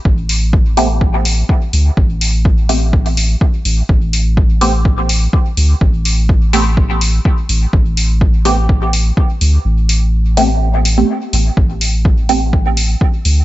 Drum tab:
HH |--o---o---o---o-|--o---o--oo---o-|--o---o---o---o-|--o---o---o---o-|
BD |o---o---o---o---|o---o---o---o---|o---o---o---o---|o---o---o---o---|

HH |--o---o---o---o-|--o---o---o---o-|--o---o---o---o-|
BD |o---o---o---o---|----------------|o---o---o---o---|